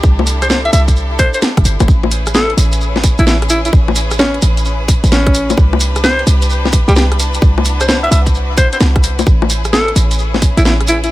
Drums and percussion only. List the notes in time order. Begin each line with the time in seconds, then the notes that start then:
0.03 kick, shekere
0.19 high bongo
0.27 open hi-hat, shekere
0.42 cross-stick, closed hi-hat, shekere
0.50 snare, shekere
0.65 closed hi-hat
0.73 open hi-hat, shekere
0.88 kick, closed hi-hat, shekere
0.96 shekere
1.19 kick, open hi-hat, shekere
1.34 closed hi-hat, shekere
1.42 snare, open hi-hat, shekere
1.57 kick, cross-stick, closed hi-hat
1.65 open hi-hat, shekere
1.80 closed hi-hat, high bongo, shekere
1.88 kick, shekere
2.03 high bongo
2.11 open hi-hat, shekere
2.26 cross-stick, closed hi-hat, shekere
2.34 snare, shekere
2.50 closed hi-hat
2.58 open hi-hat, shekere
2.72 closed hi-hat, shekere
2.81 shekere
2.96 snare, high bongo
3.04 kick, open hi-hat, shekere
3.18 closed hi-hat, shekere
3.27 snare, shekere
3.42 cross-stick, closed hi-hat
3.50 open hi-hat, shekere
3.65 closed hi-hat, shekere
3.73 kick, shekere
3.88 high bongo
3.95 open hi-hat, shekere
4.11 cross-stick, closed hi-hat, shekere
4.19 snare, shekere
4.34 closed hi-hat
4.42 open hi-hat, shekere
4.57 closed hi-hat, shekere
4.65 shekere
4.88 kick, open hi-hat, shekere
5.04 closed hi-hat, shekere
5.12 snare, open hi-hat
5.27 kick, cross-stick, closed hi-hat
5.34 open hi-hat, shekere
5.50 closed hi-hat, high bongo, shekere
5.58 kick
5.73 high bongo
5.80 open hi-hat, shekere
5.96 cross-stick, closed hi-hat, shekere
6.04 snare, shekere
6.19 closed hi-hat
6.27 open hi-hat, shekere
6.42 closed hi-hat, shekere
6.50 shekere
6.65 snare, high bongo
6.73 kick, open hi-hat, shekere
6.88 closed hi-hat, shekere
6.96 snare, shekere
7.12 cross-stick, closed hi-hat
7.20 open hi-hat, shekere
7.33 closed hi-hat, shekere
7.42 kick, shekere
7.58 high bongo
7.65 open hi-hat, shekere
7.80 cross-stick, closed hi-hat, shekere
7.88 snare, shekere
8.04 closed hi-hat
8.12 open hi-hat, shekere
8.26 kick, closed hi-hat, shekere
8.35 shekere
8.57 kick, open hi-hat, shekere
8.72 closed hi-hat, shekere
8.80 snare, open hi-hat, shekere
8.96 kick, cross-stick, closed hi-hat
9.03 open hi-hat, shekere
9.19 closed hi-hat, high bongo, shekere
9.26 kick, shekere
9.42 high bongo
9.50 open hi-hat, shekere
9.64 cross-stick, closed hi-hat, shekere
9.73 snare, shekere
9.88 closed hi-hat
9.96 open hi-hat, shekere
10.11 closed hi-hat, shekere
10.18 shekere
10.34 snare, high bongo
10.42 kick, open hi-hat, shekere
10.57 closed hi-hat, shekere
10.65 snare, shekere
10.81 cross-stick, closed hi-hat
10.87 open hi-hat, shekere
11.04 closed hi-hat, shekere